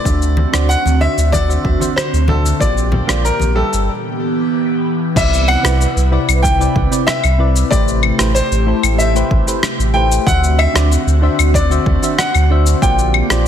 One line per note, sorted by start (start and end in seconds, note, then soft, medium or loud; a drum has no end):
0.00 0.71 D5 loud
0.05 0.46 D2 medium
0.05 0.49 D3 medium
0.05 3.85 D3 medium
0.05 2.59 C4 medium
0.05 0.50 D4 medium
0.05 0.50 F#4 medium
0.05 2.59 F#4 medium
0.05 0.50 C5 medium
0.05 0.50 E5 medium
0.05 kick loud
0.05 cabasa soft
0.22 cabasa soft
0.37 high conga medium
0.52 0.76 D2 medium
0.52 0.66 D3 medium
0.52 0.67 D4 medium
0.52 0.67 F#4 medium
0.52 0.67 C5 medium
0.52 0.67 D5 loud
0.52 cross-stick medium
0.52 cabasa medium
0.69 1.02 F#5 loud
0.69 cabasa soft
0.85 1.07 D2 medium
0.85 high conga medium
0.85 cabasa soft
1.00 1.45 D3 medium
1.00 1.45 D4 medium
1.00 1.45 F#4 medium
1.00 1.46 C5 medium
1.00 1.34 E5 loud
1.00 1.46 E5 medium
1.17 1.57 D2 medium
1.17 cabasa medium
1.32 1.99 D5 loud
1.32 kick medium
1.32 high conga medium
1.32 cabasa medium
1.48 1.77 D3 medium
1.48 1.77 D4 medium
1.48 1.77 F#4 medium
1.48 1.77 C5 medium
1.48 1.78 E5 medium
1.48 cabasa soft
1.65 1.76 D2 medium
1.65 kick medium
1.79 1.89 D3 medium
1.79 1.89 D4 medium
1.79 1.89 F#4 medium
1.79 1.89 C5 medium
1.79 1.90 E5 medium
1.79 high conga medium
1.79 cabasa medium
1.96 2.30 C5 medium
1.96 cross-stick medium
1.96 cabasa soft
2.13 2.53 D2 medium
2.13 cabasa soft
2.28 2.57 D3 medium
2.28 2.57 D4 medium
2.28 2.57 F#4 medium
2.28 2.62 A4 medium
2.28 2.57 C5 medium
2.28 2.57 E5 medium
2.28 high conga medium
2.28 low conga medium
2.46 cabasa medium
2.59 3.01 A#1 medium
2.59 3.87 A#2 medium
2.59 3.04 A#3 medium
2.59 3.04 F4 medium
2.59 3.05 G4 medium
2.59 3.87 G4 medium
2.59 3.05 C5 medium
2.59 3.26 D5 medium
2.59 3.05 D5 medium
2.59 kick loud
2.59 cabasa medium
2.78 cabasa soft
2.92 high conga medium
2.92 low conga medium
3.07 3.31 A#1 medium
3.07 3.21 A#3 medium
3.07 3.22 F4 medium
3.07 3.22 G4 medium
3.07 3.22 C5 medium
3.07 3.22 D5 loud
3.07 cross-stick medium
3.07 cabasa medium
3.25 3.58 A#4 medium
3.25 cabasa medium
3.40 3.63 A#1 medium
3.40 high conga medium
3.40 cabasa soft
3.55 3.88 G3 medium
3.55 3.88 G4 medium
3.55 3.89 A4 medium
3.55 3.88 A4 medium
3.55 3.88 B4 medium
3.55 3.89 E5 medium
3.73 3.89 G1 medium
3.73 cabasa medium
3.88 5.15 E3 medium
3.88 5.15 B3 medium
3.88 5.15 G4 medium
5.15 5.56 C2 medium
5.15 5.60 C3 medium
5.15 10.23 C3 medium
5.15 5.60 C4 medium
5.15 5.60 E4 medium
5.15 7.70 E4 medium
5.15 5.61 B4 medium
5.15 7.70 B4 medium
5.15 5.61 D5 medium
5.15 5.46 E5 medium
5.15 kick loud
5.15 crash loud
5.15 cabasa medium
5.34 cabasa soft
5.48 6.08 F#5 loud
5.48 claves medium
5.63 5.86 C2 medium
5.63 5.77 C3 medium
5.63 5.77 C4 medium
5.63 5.78 E4 medium
5.63 5.78 B4 medium
5.63 5.78 D5 loud
5.63 cross-stick medium
5.63 cabasa medium
5.81 cabasa medium
5.96 6.18 C2 loud
5.96 cabasa soft
6.11 6.56 C3 medium
6.11 6.56 C4 medium
6.11 6.56 E4 medium
6.11 6.56 B4 medium
6.11 6.57 D5 medium
6.28 6.68 C2 medium
6.28 cabasa medium
6.28 claves medium
6.43 7.09 G5 loud
6.43 kick loud
6.43 cabasa medium
6.59 6.87 C3 medium
6.59 6.88 C4 medium
6.59 6.88 E4 medium
6.59 6.88 B4 medium
6.59 6.88 D5 medium
6.59 cabasa soft
6.76 6.87 C2 medium
6.76 kick loud
6.90 6.99 C3 medium
6.90 7.00 C4 medium
6.90 7.00 E4 medium
6.90 7.00 B4 medium
6.90 7.00 D5 medium
6.90 cabasa medium
7.07 7.73 E5 loud
7.07 cross-stick medium
7.07 cabasa medium
7.24 7.64 C2 medium
7.24 cabasa soft
7.24 claves medium
7.38 7.67 C3 medium
7.38 7.67 C4 medium
7.38 7.67 E4 medium
7.38 7.68 B4 medium
7.38 7.68 D5 medium
7.56 cabasa medium
7.70 8.12 A1 loud
7.70 8.15 A3 medium
7.70 10.25 A3 medium
7.70 8.15 E4 medium
7.70 8.16 G4 medium
7.70 10.25 G4 medium
7.70 8.16 B4 medium
7.70 8.16 C5 medium
7.70 8.31 D5 medium
7.70 kick loud
7.70 cabasa medium
7.88 cabasa soft
8.03 claves medium
8.18 8.41 A1 medium
8.18 8.32 A3 medium
8.18 8.32 E4 medium
8.18 8.33 G4 medium
8.18 8.33 B4 medium
8.18 8.33 C5 loud
8.18 cross-stick medium
8.18 cabasa medium
8.35 9.01 C5 loud
8.35 cabasa medium
8.51 8.73 A1 loud
8.51 cabasa soft
8.66 9.11 A3 medium
8.66 9.11 E4 medium
8.66 9.11 G4 medium
8.66 9.12 A4 medium
8.66 9.12 C5 medium
8.83 9.23 A1 medium
8.83 cabasa medium
8.83 claves medium
8.98 9.97 E5 medium
8.98 cabasa medium
9.15 9.43 A3 medium
9.15 9.43 E4 medium
9.15 9.44 G4 medium
9.15 9.44 B4 medium
9.15 9.44 C5 loud
9.15 cabasa soft
9.31 9.42 A1 loud
9.31 kick loud
9.46 9.55 A3 medium
9.46 9.55 E4 medium
9.46 9.56 G4 medium
9.46 9.56 B4 medium
9.46 9.56 C5 medium
9.46 cabasa medium
9.63 cross-stick medium
9.63 cabasa medium
9.79 10.19 A1 medium
9.79 cabasa soft
9.94 10.23 A3 medium
9.94 10.23 E4 medium
9.94 10.23 G4 medium
9.94 10.24 B4 medium
9.94 10.24 C5 medium
9.94 10.27 G5 loud
10.12 cabasa medium
10.26 10.67 D2 loud
10.26 10.71 D3 medium
10.26 13.48 D3 medium
10.26 12.80 C4 medium
10.26 10.71 D4 medium
10.26 10.71 F#4 medium
10.26 12.80 F#4 medium
10.26 10.72 C5 medium
10.26 10.72 E5 medium
10.26 10.56 F#5 loud
10.26 kick loud
10.26 cabasa medium
10.44 cabasa soft
10.59 11.50 E5 loud
10.59 claves medium
10.74 10.97 D2 medium
10.74 10.88 D3 medium
10.74 10.88 D4 medium
10.74 10.88 F#4 medium
10.74 10.88 C5 medium
10.74 10.89 D5 loud
10.74 cross-stick medium
10.74 cabasa medium
10.92 cabasa medium
11.06 11.29 D2 loud
11.06 cabasa soft
11.21 11.66 D3 medium
11.21 11.67 D4 medium
11.21 11.67 F#4 medium
11.21 11.67 C5 medium
11.21 11.67 E5 medium
11.39 11.79 D2 medium
11.39 cabasa medium
11.39 claves medium
11.54 12.20 D5 medium
11.54 kick loud
11.54 cabasa medium
11.70 11.98 D3 medium
11.70 11.99 D4 medium
11.70 11.99 F#4 medium
11.70 11.99 C5 medium
11.70 11.99 E5 medium
11.70 cabasa soft
11.86 11.98 D2 medium
11.86 kick loud
12.02 12.10 D3 medium
12.02 12.11 D4 medium
12.02 12.11 F#4 medium
12.02 12.11 C5 medium
12.02 12.12 E5 loud
12.02 cabasa medium
12.18 12.84 F#5 medium
12.18 cross-stick medium
12.18 cabasa medium
12.34 12.74 D2 medium
12.34 cabasa soft
12.34 claves medium
12.50 12.78 D3 medium
12.50 12.78 D4 medium
12.50 12.79 F#4 medium
12.50 12.79 C5 medium
12.50 12.79 E5 medium
12.67 cabasa medium
12.82 13.22 A#1 loud
12.82 13.26 A#3 medium
12.82 13.48 A#3 medium
12.82 13.26 F4 medium
12.82 13.27 G4 medium
12.82 13.48 G4 medium
12.82 13.27 C5 medium
12.82 13.27 D5 medium
12.82 13.48 G5 medium
12.82 kick loud
12.82 cabasa medium
12.99 cabasa soft
13.14 claves medium
13.30 13.48 A#1 medium
13.30 13.43 A#3 medium
13.30 13.44 F4 medium
13.30 13.44 G4 medium
13.30 13.44 C5 medium
13.30 13.44 D5 loud
13.30 cross-stick medium
13.30 cabasa medium